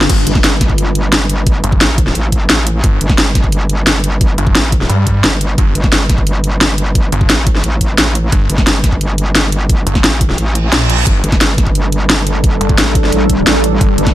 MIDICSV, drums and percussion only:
0, 0, Header, 1, 2, 480
1, 0, Start_track
1, 0, Tempo, 342857
1, 133, Time_signature, 4, 2, 24, 8
1, 19796, End_track
2, 0, Start_track
2, 0, Title_t, "Drums"
2, 14, Note_on_c, 9, 38, 86
2, 133, Note_on_c, 9, 36, 114
2, 134, Note_on_c, 9, 42, 83
2, 134, Note_on_c, 9, 49, 107
2, 154, Note_off_c, 9, 38, 0
2, 273, Note_off_c, 9, 36, 0
2, 274, Note_off_c, 9, 42, 0
2, 274, Note_off_c, 9, 49, 0
2, 374, Note_on_c, 9, 42, 101
2, 493, Note_on_c, 9, 36, 102
2, 494, Note_on_c, 9, 40, 60
2, 514, Note_off_c, 9, 42, 0
2, 614, Note_on_c, 9, 38, 127
2, 614, Note_on_c, 9, 42, 90
2, 633, Note_off_c, 9, 36, 0
2, 634, Note_off_c, 9, 40, 0
2, 754, Note_off_c, 9, 38, 0
2, 754, Note_off_c, 9, 42, 0
2, 853, Note_on_c, 9, 36, 105
2, 854, Note_on_c, 9, 40, 49
2, 854, Note_on_c, 9, 42, 95
2, 973, Note_off_c, 9, 36, 0
2, 973, Note_on_c, 9, 36, 65
2, 994, Note_off_c, 9, 40, 0
2, 994, Note_off_c, 9, 42, 0
2, 1093, Note_on_c, 9, 42, 83
2, 1113, Note_off_c, 9, 36, 0
2, 1233, Note_off_c, 9, 42, 0
2, 1334, Note_on_c, 9, 42, 97
2, 1474, Note_off_c, 9, 42, 0
2, 1574, Note_on_c, 9, 38, 121
2, 1574, Note_on_c, 9, 42, 82
2, 1714, Note_off_c, 9, 38, 0
2, 1714, Note_off_c, 9, 42, 0
2, 1813, Note_on_c, 9, 42, 99
2, 1953, Note_off_c, 9, 42, 0
2, 2052, Note_on_c, 9, 36, 126
2, 2052, Note_on_c, 9, 42, 81
2, 2192, Note_off_c, 9, 36, 0
2, 2192, Note_off_c, 9, 42, 0
2, 2292, Note_on_c, 9, 42, 92
2, 2412, Note_on_c, 9, 36, 108
2, 2432, Note_off_c, 9, 42, 0
2, 2533, Note_on_c, 9, 38, 127
2, 2533, Note_on_c, 9, 42, 84
2, 2552, Note_off_c, 9, 36, 0
2, 2673, Note_off_c, 9, 38, 0
2, 2673, Note_off_c, 9, 42, 0
2, 2772, Note_on_c, 9, 36, 115
2, 2773, Note_on_c, 9, 42, 89
2, 2893, Note_on_c, 9, 38, 37
2, 2912, Note_off_c, 9, 36, 0
2, 2913, Note_off_c, 9, 42, 0
2, 3013, Note_on_c, 9, 42, 79
2, 3033, Note_off_c, 9, 38, 0
2, 3153, Note_off_c, 9, 42, 0
2, 3252, Note_on_c, 9, 36, 70
2, 3253, Note_on_c, 9, 42, 98
2, 3392, Note_off_c, 9, 36, 0
2, 3393, Note_off_c, 9, 42, 0
2, 3493, Note_on_c, 9, 38, 127
2, 3493, Note_on_c, 9, 42, 84
2, 3633, Note_off_c, 9, 38, 0
2, 3633, Note_off_c, 9, 42, 0
2, 3733, Note_on_c, 9, 42, 103
2, 3873, Note_off_c, 9, 42, 0
2, 3973, Note_on_c, 9, 36, 120
2, 3973, Note_on_c, 9, 42, 76
2, 4113, Note_off_c, 9, 36, 0
2, 4113, Note_off_c, 9, 42, 0
2, 4213, Note_on_c, 9, 42, 93
2, 4333, Note_on_c, 9, 36, 112
2, 4333, Note_on_c, 9, 40, 56
2, 4353, Note_off_c, 9, 42, 0
2, 4453, Note_on_c, 9, 38, 127
2, 4453, Note_on_c, 9, 42, 82
2, 4473, Note_off_c, 9, 36, 0
2, 4473, Note_off_c, 9, 40, 0
2, 4593, Note_off_c, 9, 38, 0
2, 4593, Note_off_c, 9, 42, 0
2, 4693, Note_on_c, 9, 36, 114
2, 4693, Note_on_c, 9, 40, 46
2, 4693, Note_on_c, 9, 42, 94
2, 4813, Note_off_c, 9, 36, 0
2, 4813, Note_on_c, 9, 36, 69
2, 4833, Note_off_c, 9, 40, 0
2, 4833, Note_off_c, 9, 42, 0
2, 4933, Note_on_c, 9, 42, 74
2, 4953, Note_off_c, 9, 36, 0
2, 5073, Note_off_c, 9, 42, 0
2, 5173, Note_on_c, 9, 42, 95
2, 5313, Note_off_c, 9, 42, 0
2, 5413, Note_on_c, 9, 38, 125
2, 5413, Note_on_c, 9, 42, 78
2, 5553, Note_off_c, 9, 38, 0
2, 5553, Note_off_c, 9, 42, 0
2, 5653, Note_on_c, 9, 42, 95
2, 5793, Note_off_c, 9, 42, 0
2, 5893, Note_on_c, 9, 36, 124
2, 5893, Note_on_c, 9, 42, 76
2, 6033, Note_off_c, 9, 36, 0
2, 6033, Note_off_c, 9, 42, 0
2, 6133, Note_on_c, 9, 42, 92
2, 6253, Note_on_c, 9, 36, 106
2, 6273, Note_off_c, 9, 42, 0
2, 6374, Note_on_c, 9, 38, 127
2, 6374, Note_on_c, 9, 42, 82
2, 6393, Note_off_c, 9, 36, 0
2, 6514, Note_off_c, 9, 38, 0
2, 6514, Note_off_c, 9, 42, 0
2, 6613, Note_on_c, 9, 36, 111
2, 6614, Note_on_c, 9, 42, 89
2, 6734, Note_on_c, 9, 38, 38
2, 6753, Note_off_c, 9, 36, 0
2, 6754, Note_off_c, 9, 42, 0
2, 6854, Note_on_c, 9, 42, 75
2, 6874, Note_off_c, 9, 38, 0
2, 6994, Note_off_c, 9, 42, 0
2, 7092, Note_on_c, 9, 36, 67
2, 7093, Note_on_c, 9, 42, 90
2, 7232, Note_off_c, 9, 36, 0
2, 7233, Note_off_c, 9, 42, 0
2, 7333, Note_on_c, 9, 38, 127
2, 7333, Note_on_c, 9, 42, 72
2, 7473, Note_off_c, 9, 38, 0
2, 7473, Note_off_c, 9, 42, 0
2, 7574, Note_on_c, 9, 42, 95
2, 7714, Note_off_c, 9, 42, 0
2, 7812, Note_on_c, 9, 36, 123
2, 7814, Note_on_c, 9, 42, 77
2, 7952, Note_off_c, 9, 36, 0
2, 7954, Note_off_c, 9, 42, 0
2, 8053, Note_on_c, 9, 42, 85
2, 8173, Note_on_c, 9, 36, 107
2, 8173, Note_on_c, 9, 40, 55
2, 8193, Note_off_c, 9, 42, 0
2, 8293, Note_on_c, 9, 38, 127
2, 8293, Note_on_c, 9, 42, 79
2, 8313, Note_off_c, 9, 36, 0
2, 8313, Note_off_c, 9, 40, 0
2, 8433, Note_off_c, 9, 38, 0
2, 8433, Note_off_c, 9, 42, 0
2, 8533, Note_on_c, 9, 36, 109
2, 8533, Note_on_c, 9, 40, 44
2, 8533, Note_on_c, 9, 42, 90
2, 8653, Note_off_c, 9, 36, 0
2, 8653, Note_on_c, 9, 36, 65
2, 8673, Note_off_c, 9, 40, 0
2, 8673, Note_off_c, 9, 42, 0
2, 8774, Note_on_c, 9, 42, 76
2, 8793, Note_off_c, 9, 36, 0
2, 8914, Note_off_c, 9, 42, 0
2, 9013, Note_on_c, 9, 42, 94
2, 9153, Note_off_c, 9, 42, 0
2, 9254, Note_on_c, 9, 38, 121
2, 9254, Note_on_c, 9, 42, 78
2, 9394, Note_off_c, 9, 38, 0
2, 9394, Note_off_c, 9, 42, 0
2, 9492, Note_on_c, 9, 42, 90
2, 9632, Note_off_c, 9, 42, 0
2, 9733, Note_on_c, 9, 36, 116
2, 9733, Note_on_c, 9, 42, 77
2, 9873, Note_off_c, 9, 36, 0
2, 9873, Note_off_c, 9, 42, 0
2, 9973, Note_on_c, 9, 42, 90
2, 10093, Note_on_c, 9, 36, 99
2, 10113, Note_off_c, 9, 42, 0
2, 10213, Note_on_c, 9, 38, 127
2, 10213, Note_on_c, 9, 42, 84
2, 10233, Note_off_c, 9, 36, 0
2, 10353, Note_off_c, 9, 38, 0
2, 10353, Note_off_c, 9, 42, 0
2, 10453, Note_on_c, 9, 36, 107
2, 10453, Note_on_c, 9, 42, 89
2, 10574, Note_on_c, 9, 38, 34
2, 10593, Note_off_c, 9, 36, 0
2, 10593, Note_off_c, 9, 42, 0
2, 10693, Note_on_c, 9, 42, 79
2, 10714, Note_off_c, 9, 38, 0
2, 10833, Note_off_c, 9, 42, 0
2, 10933, Note_on_c, 9, 36, 60
2, 10933, Note_on_c, 9, 42, 99
2, 11073, Note_off_c, 9, 36, 0
2, 11073, Note_off_c, 9, 42, 0
2, 11173, Note_on_c, 9, 38, 116
2, 11173, Note_on_c, 9, 42, 80
2, 11313, Note_off_c, 9, 38, 0
2, 11313, Note_off_c, 9, 42, 0
2, 11413, Note_on_c, 9, 42, 95
2, 11553, Note_off_c, 9, 42, 0
2, 11653, Note_on_c, 9, 36, 109
2, 11653, Note_on_c, 9, 42, 82
2, 11793, Note_off_c, 9, 36, 0
2, 11793, Note_off_c, 9, 42, 0
2, 11894, Note_on_c, 9, 42, 97
2, 12013, Note_on_c, 9, 36, 97
2, 12013, Note_on_c, 9, 40, 59
2, 12034, Note_off_c, 9, 42, 0
2, 12134, Note_on_c, 9, 38, 119
2, 12134, Note_on_c, 9, 42, 83
2, 12153, Note_off_c, 9, 36, 0
2, 12153, Note_off_c, 9, 40, 0
2, 12274, Note_off_c, 9, 38, 0
2, 12274, Note_off_c, 9, 42, 0
2, 12373, Note_on_c, 9, 36, 106
2, 12373, Note_on_c, 9, 40, 46
2, 12373, Note_on_c, 9, 42, 99
2, 12493, Note_off_c, 9, 36, 0
2, 12493, Note_on_c, 9, 36, 61
2, 12513, Note_off_c, 9, 40, 0
2, 12513, Note_off_c, 9, 42, 0
2, 12614, Note_on_c, 9, 42, 80
2, 12633, Note_off_c, 9, 36, 0
2, 12754, Note_off_c, 9, 42, 0
2, 12854, Note_on_c, 9, 42, 100
2, 12994, Note_off_c, 9, 42, 0
2, 13093, Note_on_c, 9, 38, 114
2, 13093, Note_on_c, 9, 42, 81
2, 13233, Note_off_c, 9, 38, 0
2, 13233, Note_off_c, 9, 42, 0
2, 13333, Note_on_c, 9, 42, 95
2, 13473, Note_off_c, 9, 42, 0
2, 13573, Note_on_c, 9, 36, 115
2, 13573, Note_on_c, 9, 42, 85
2, 13713, Note_off_c, 9, 36, 0
2, 13713, Note_off_c, 9, 42, 0
2, 13813, Note_on_c, 9, 42, 98
2, 13933, Note_on_c, 9, 36, 101
2, 13934, Note_on_c, 9, 40, 59
2, 13953, Note_off_c, 9, 42, 0
2, 14054, Note_on_c, 9, 38, 121
2, 14054, Note_on_c, 9, 42, 85
2, 14073, Note_off_c, 9, 36, 0
2, 14074, Note_off_c, 9, 40, 0
2, 14194, Note_off_c, 9, 38, 0
2, 14194, Note_off_c, 9, 42, 0
2, 14293, Note_on_c, 9, 36, 107
2, 14294, Note_on_c, 9, 42, 94
2, 14414, Note_on_c, 9, 38, 34
2, 14433, Note_off_c, 9, 36, 0
2, 14434, Note_off_c, 9, 42, 0
2, 14534, Note_on_c, 9, 42, 85
2, 14554, Note_off_c, 9, 38, 0
2, 14674, Note_off_c, 9, 42, 0
2, 14774, Note_on_c, 9, 42, 99
2, 14914, Note_off_c, 9, 42, 0
2, 15014, Note_on_c, 9, 38, 120
2, 15014, Note_on_c, 9, 42, 85
2, 15154, Note_off_c, 9, 38, 0
2, 15154, Note_off_c, 9, 42, 0
2, 15254, Note_on_c, 9, 42, 101
2, 15394, Note_off_c, 9, 42, 0
2, 15493, Note_on_c, 9, 36, 119
2, 15494, Note_on_c, 9, 42, 82
2, 15633, Note_off_c, 9, 36, 0
2, 15634, Note_off_c, 9, 42, 0
2, 15733, Note_on_c, 9, 42, 96
2, 15852, Note_on_c, 9, 36, 106
2, 15854, Note_on_c, 9, 40, 62
2, 15873, Note_off_c, 9, 42, 0
2, 15973, Note_on_c, 9, 38, 127
2, 15973, Note_on_c, 9, 42, 87
2, 15992, Note_off_c, 9, 36, 0
2, 15994, Note_off_c, 9, 40, 0
2, 16113, Note_off_c, 9, 38, 0
2, 16113, Note_off_c, 9, 42, 0
2, 16213, Note_on_c, 9, 36, 110
2, 16213, Note_on_c, 9, 40, 49
2, 16213, Note_on_c, 9, 42, 98
2, 16333, Note_off_c, 9, 36, 0
2, 16333, Note_on_c, 9, 36, 64
2, 16353, Note_off_c, 9, 40, 0
2, 16353, Note_off_c, 9, 42, 0
2, 16453, Note_on_c, 9, 42, 81
2, 16473, Note_off_c, 9, 36, 0
2, 16593, Note_off_c, 9, 42, 0
2, 16694, Note_on_c, 9, 42, 98
2, 16834, Note_off_c, 9, 42, 0
2, 16933, Note_on_c, 9, 38, 122
2, 16933, Note_on_c, 9, 42, 81
2, 17073, Note_off_c, 9, 38, 0
2, 17073, Note_off_c, 9, 42, 0
2, 17173, Note_on_c, 9, 42, 97
2, 17313, Note_off_c, 9, 42, 0
2, 17412, Note_on_c, 9, 36, 124
2, 17413, Note_on_c, 9, 42, 79
2, 17552, Note_off_c, 9, 36, 0
2, 17553, Note_off_c, 9, 42, 0
2, 17653, Note_on_c, 9, 42, 97
2, 17772, Note_on_c, 9, 36, 112
2, 17793, Note_off_c, 9, 42, 0
2, 17894, Note_on_c, 9, 38, 127
2, 17894, Note_on_c, 9, 42, 88
2, 17912, Note_off_c, 9, 36, 0
2, 18034, Note_off_c, 9, 38, 0
2, 18034, Note_off_c, 9, 42, 0
2, 18132, Note_on_c, 9, 36, 111
2, 18134, Note_on_c, 9, 42, 94
2, 18254, Note_on_c, 9, 38, 39
2, 18272, Note_off_c, 9, 36, 0
2, 18274, Note_off_c, 9, 42, 0
2, 18374, Note_on_c, 9, 42, 78
2, 18394, Note_off_c, 9, 38, 0
2, 18514, Note_off_c, 9, 42, 0
2, 18612, Note_on_c, 9, 36, 67
2, 18614, Note_on_c, 9, 42, 99
2, 18752, Note_off_c, 9, 36, 0
2, 18754, Note_off_c, 9, 42, 0
2, 18854, Note_on_c, 9, 38, 127
2, 18854, Note_on_c, 9, 42, 81
2, 18994, Note_off_c, 9, 38, 0
2, 18994, Note_off_c, 9, 42, 0
2, 19095, Note_on_c, 9, 42, 97
2, 19235, Note_off_c, 9, 42, 0
2, 19333, Note_on_c, 9, 36, 126
2, 19334, Note_on_c, 9, 42, 82
2, 19473, Note_off_c, 9, 36, 0
2, 19474, Note_off_c, 9, 42, 0
2, 19573, Note_on_c, 9, 42, 88
2, 19693, Note_on_c, 9, 36, 109
2, 19694, Note_on_c, 9, 40, 59
2, 19713, Note_off_c, 9, 42, 0
2, 19796, Note_off_c, 9, 36, 0
2, 19796, Note_off_c, 9, 40, 0
2, 19796, End_track
0, 0, End_of_file